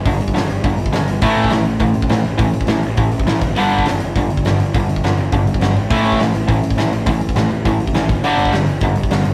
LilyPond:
<<
  \new Staff \with { instrumentName = "Overdriven electric guitar" } { \clef bass \time 4/4 \key g \mixolydian \tempo 4 = 205 <g, d>8 r8 <g, d>8 r8 <g, d>8 r8 <g, d>8 r8 | <a, e a>4 <a, e>8 r8 <a, e>8 r8 <a, e>8 r8 | <a, e>8 r8 <a, e>8 r8 <a, e>8 r8 <a, e>8 r8 | <g, d g>4 <g, d>8 r8 <g, d>8 r8 <g, d>8 r8 |
<g, d>8 r8 <g, d>8 r8 <g, d>8 r8 <g, d>8 r8 | <a, e a>4 <a, e>8 r8 <a, e>8 r8 <a, e>8 r8 | <a, e>8 r8 <a, e>8 r8 <a, e>8 r8 <a, e>8 r8 | <g, d g>4 <g, d>8 r8 <g, d>8 r8 <g, d>8 r8 | }
  \new Staff \with { instrumentName = "Overdriven electric guitar" } { \clef bass \time 4/4 \key g \mixolydian r1 | <a, e a>4 <a, e>8 r8 <a, e>8 r8 <a, e>8 r8 | <a, e>8 r8 <a, e>8 r8 <a, e>8 r8 <a, e>8 r8 | <g, d g>4 <g, d>8 r8 <g, d>8 r8 <g, d>8 r8 |
<g, d>8 r8 <g, d>8 r8 <g, d>8 r8 <g, d>8 r8 | <a, e a>4 <a, e>8 r8 <a, e>8 r8 <a, e>8 r8 | <a, e>8 r8 <a, e>8 r8 <a, e>8 r8 <a, e>8 r8 | <g, d g>4 <g, d>8 r8 <g, d>8 r8 <g, d>8 r8 | }
  \new Staff \with { instrumentName = "Picked electric bass" } { \clef bass \time 4/4 \key g \mixolydian g,,8 g,,8 g,,8 g,,8 g,,8 g,,8 g,,8 g,,8 | a,,8 a,,8 a,,8 a,,8 a,,8 a,,8 a,,8 a,,8 | a,,8 a,,8 a,,8 a,,8 a,,8 a,,8 a,,8 g,,8 | g,,8 g,,8 g,,8 g,,8 g,,8 g,,8 g,,8 g,,8 |
g,,8 g,,8 g,,8 g,,8 g,,8 g,,8 g,,8 gis,,8 | a,,8 a,,8 a,,8 a,,8 a,,8 a,,8 a,,8 a,,8 | a,,8 a,,8 a,,8 a,,8 a,,8 a,,8 a,,8 g,,8 | g,,8 g,,8 g,,8 g,,8 g,,8 g,,8 g,,8 g,,8 | }
  \new DrumStaff \with { instrumentName = "Drums" } \drummode { \time 4/4 <hho bd>8 hho16 bd16 <hho sn>8 hho8 <hho bd>8 hho16 bd16 <hho sn>8 hho8 | <hho bd>8 hho16 bd16 <hho sn>8 hho8 <hho bd>8 hho16 bd16 <hho sn>8 hho8 | <hho bd>8 hho16 bd16 <hho sn>8 hho8 <hho bd>8 hho16 bd16 <hho sn>8 <hho bd>8 | hho8 hho16 bd16 <hho sn>8 hho8 <hho bd>8 hho16 bd16 <hho sn>8 hho8 |
<hho bd>8 hho16 bd16 <hho sn>8 hho8 <hho bd>8 hho16 bd16 <hho sn>8 hho8 | <hho bd>8 hho16 bd16 <hho sn>8 hho8 <hho bd>8 hho16 bd16 <hho sn>8 hho8 | <hho bd>8 hho16 bd16 <hho sn>8 hho8 <hho bd>8 hho16 bd16 <hho sn>8 <hho bd>8 | hho8 hho16 bd16 <hho sn>8 hho8 <hho bd>8 hho16 bd16 <hho sn>8 hho8 | }
>>